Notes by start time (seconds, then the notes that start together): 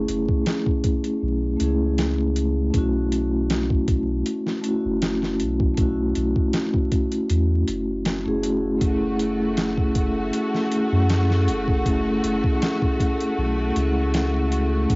Already playing: A3 C#4 E4 G#4
0.08 F#1, closed hi-hat
0.28 kick
0.46 snare, closed hi-hat
0.66 kick
0.84 kick, closed hi-hat
1.04 closed hi-hat
1.22 B1
1.57 C#2 A3 C#4, closed hi-hat
1.61 E4 G#4
1.98 snare, closed hi-hat
2.36 closed hi-hat
2.71 B1 A3 C#4, kick, closed hi-hat
2.75 E4 F#4
3.12 closed hi-hat
3.50 snare, closed hi-hat
3.70 kick
3.88 kick, closed hi-hat
4.26 closed hi-hat
4.47 snare
4.61 A3 C#4, closed hi-hat
4.66 E4 F#4
4.85 F#1
5.02 snare, closed hi-hat
5.23 snare
5.40 B1, closed hi-hat
5.60 kick
5.74 A3 C#4, kick, closed hi-hat
5.80 E4 F#4
6.15 B1, closed hi-hat
6.36 kick
6.53 snare, closed hi-hat
6.74 kick
6.92 kick, closed hi-hat
7.12 closed hi-hat
7.29 E2, closed hi-hat
7.68 F#1, closed hi-hat
8.05 snare, closed hi-hat
8.24 F#1 A3 C#4 E4 G#4
8.42 A3 C#4 E4 F#4, closed hi-hat
8.78 F#1 A3 C#4 F#4, kick, closed hi-hat
8.83 E4 G#4
9.19 closed hi-hat
9.57 snare, closed hi-hat
9.78 kick
9.95 kick, closed hi-hat
10.33 closed hi-hat
10.54 snare
10.68 A3 C#4, closed hi-hat
10.73 E4 G#4
10.92 F#2
11.09 snare, closed hi-hat
11.30 snare
11.48 F#1, closed hi-hat
11.68 kick
11.83 A3 C#4, kick, closed hi-hat
11.88 E4 G#4
12.24 F#1, closed hi-hat
12.44 kick
12.62 snare, closed hi-hat
12.82 kick
13.00 kick, closed hi-hat
13.21 closed hi-hat
13.38 B1
13.73 C#2 A3 C#4, closed hi-hat
13.77 E4 G#4
14.14 snare, closed hi-hat
14.52 closed hi-hat
14.86 B1 A3 C#4, kick, closed hi-hat
14.91 E4